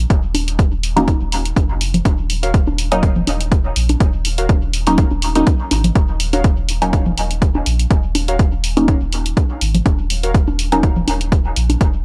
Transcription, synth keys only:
2.43 2.51 F#4 medium
2.43 2.51 A#4 medium
2.43 2.51 C#5 medium
2.43 2.51 F5 medium
4.38 4.46 F#4 medium
4.38 4.46 A#4 medium
4.38 4.46 C#5 medium
4.38 4.46 F5 medium
6.33 6.41 F#4 medium
6.33 6.41 A#4 medium
6.33 6.41 C#5 medium
6.33 6.41 F5 medium
8.28 8.36 F#4 medium
8.28 8.36 A#4 medium
8.28 8.36 C#5 medium
8.28 8.36 F5 medium
10.23 10.31 F#4 medium
10.23 10.31 A#4 medium
10.23 10.31 C#5 medium
10.23 10.31 F5 medium

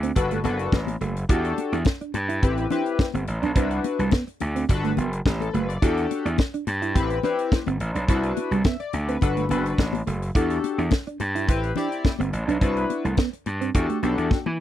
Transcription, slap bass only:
0.00 0.11 D2 medium
0.16 0.39 G1 medium
0.44 0.67 F#1 medium
0.72 0.95 A1 medium
1.01 1.24 F#1 loud
1.29 1.52 E2 loud
1.72 1.83 E2 medium
2.14 2.44 G2 medium
2.43 2.65 A1 loud
3.14 3.25 G1 medium
3.28 3.40 A1 medium
3.43 3.53 B1 medium
3.56 3.79 C2 loud
3.99 4.10 C2 medium
4.41 4.64 D2 medium
4.69 4.92 G1 medium
4.97 5.20 F#1 medium
5.26 5.48 A1 medium
5.54 5.77 F#1 medium
5.82 6.05 E2 loud
6.25 6.36 E2 medium
6.67 6.97 G2 medium
6.96 7.18 A1 loud
7.67 7.78 G1 medium
7.80 7.92 A1 loud
7.95 8.06 B1 medium
8.09 8.31 C2 loud
8.51 8.62 C2 medium
8.93 9.16 D2 medium
9.22 9.45 G1 loud
9.50 9.73 F#1 medium
9.78 10.01 A1 medium
10.07 10.30 F#1 medium
10.35 10.58 E2 medium
10.78 10.89 E2 medium
11.20 11.50 G2 medium
11.49 11.71 A1 medium
12.20 12.30 G1 medium
12.33 12.45 A1 medium
12.48 12.59 B1 medium
12.62 12.84 C2 loud
13.05 13.15 C2 medium
13.46 13.69 G2 medium
13.75 13.87 E2 loud
14.03 14.15 B1 loud
14.18 14.28 E2 medium
14.46 14.57 E3 medium

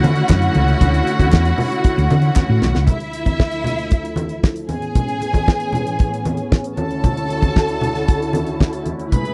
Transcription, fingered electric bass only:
0.04 0.22 D3 loud
0.30 0.48 F#2 loud
0.56 0.74 C#2 medium
0.82 1.00 D2 loud
1.20 1.29 D2 loud
1.33 1.51 E2 medium
1.98 2.07 D2 loud
2.11 2.29 D3 loud
2.49 2.59 A2 medium
2.62 2.71 B1 loud
2.75 2.84 C#2 medium

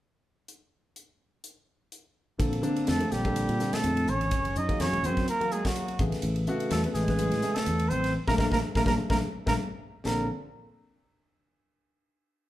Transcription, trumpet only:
2.88 3.14 A4 medium
3.12 3.76 G4 medium
3.74 4.11 A4 medium
4.09 4.59 C#5 medium
4.58 4.83 D#5 medium
4.81 5.07 C#5 medium
5.05 5.29 C5 medium
5.29 5.54 A#4 medium
5.52 5.67 G#4 medium
5.66 6.00 F#4 medium
6.71 6.82 A4 medium
6.94 7.56 G#4 medium
7.55 7.90 A4 medium
7.89 8.14 C5 medium
8.28 8.34 A#4 medium
8.39 8.45 A#4 medium
8.52 8.58 A#4 medium
8.76 8.82 A#4 medium
8.87 8.93 A#4 medium
9.10 9.17 A#4 medium
9.48 9.54 A#4 medium
10.06 10.28 A#4 medium

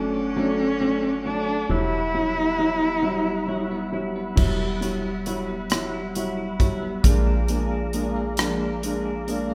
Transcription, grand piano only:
0.00 0.18 F#3 medium
0.00 0.18 A3 medium
0.00 0.18 D4 medium
0.36 0.62 F#3 medium
0.36 0.63 A3 medium
0.36 0.63 D4 medium
0.81 1.07 F#3 medium
0.81 1.07 A3 medium
0.81 1.07 D4 medium
1.25 1.52 F#3 medium
1.25 1.52 A3 medium
1.25 1.52 D4 medium
1.69 1.96 F#3 medium
1.69 1.96 G3 medium
1.69 1.96 E4 medium
2.14 2.41 F#3 medium
2.14 2.41 G3 medium
2.14 2.41 E4 medium
2.59 2.85 F#3 medium
2.59 2.85 G3 medium
2.59 2.85 E4 medium
3.02 3.29 F#3 medium
3.02 3.29 G3 medium
3.02 3.30 E4 medium
3.47 3.74 F#3 medium
3.47 3.74 G3 medium
3.47 3.74 E4 medium
3.92 4.19 F#3 medium
3.92 4.19 G3 medium
3.92 4.19 E4 medium
4.36 4.63 F#3 medium
4.36 4.63 G3 medium
4.36 4.63 E4 medium
4.81 5.08 F#3 medium
4.81 5.08 G3 medium
4.81 5.08 E4 medium
5.27 5.53 F#3 medium
5.27 5.53 G3 medium
5.27 5.53 E4 medium
5.72 5.98 F#3 medium
5.72 5.98 G3 medium
5.72 5.98 E4 medium
6.16 6.42 F#3 medium
6.16 6.42 G3 medium
6.16 6.42 E4 medium
6.60 6.86 F#3 medium
6.60 6.86 G3 medium
6.60 6.87 E4 medium
7.05 7.31 G#3 medium
7.05 7.31 A#3 medium
7.05 7.31 D4 medium
7.50 7.76 G#3 medium
7.50 7.76 A#3 medium
7.50 7.76 D4 medium
7.94 8.20 G#3 medium
7.94 8.20 A#3 medium
7.94 8.20 D4 medium
8.39 8.65 G#3 medium
8.39 8.65 A#3 medium
8.39 8.65 D4 medium
8.83 9.09 G#3 medium
8.83 9.10 A#3 medium
8.83 9.09 D4 medium
9.28 9.54 G#3 medium
9.28 9.54 A#3 medium
9.28 9.54 D4 medium

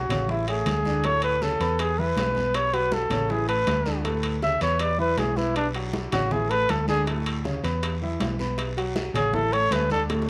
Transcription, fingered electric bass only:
0.09 0.62 A1 loud
0.66 1.54 D2 medium
1.60 2.13 E2 loud
2.16 3.05 B1 loud
3.10 3.63 A1 loud
3.66 4.55 D2 loud
4.61 5.14 E2 loud
5.17 6.06 B1 medium
6.13 6.65 A1 loud
6.69 7.58 D2 loud
7.63 8.16 E2 loud
8.20 9.09 B1 medium
9.14 9.67 A1 loud
9.71 10.30 D2 loud

